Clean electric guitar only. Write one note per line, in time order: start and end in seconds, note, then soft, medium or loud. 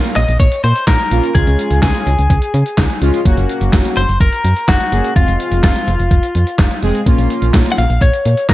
0.16 0.39 D#5 loud
0.40 0.63 C#5 loud
0.64 0.87 C5 medium
0.87 1.36 A#4 loud
1.35 1.81 G#4 medium
1.83 2.98 G#4 medium
3.97 4.20 C5 loud
4.21 4.70 A#4 loud
4.69 5.16 F#4 medium
5.16 5.63 F4 loud
5.64 6.79 F4 medium
7.72 7.78 F#5 medium
7.78 8.03 F5 loud
8.02 8.49 C#5 loud
8.49 8.54 A#4 medium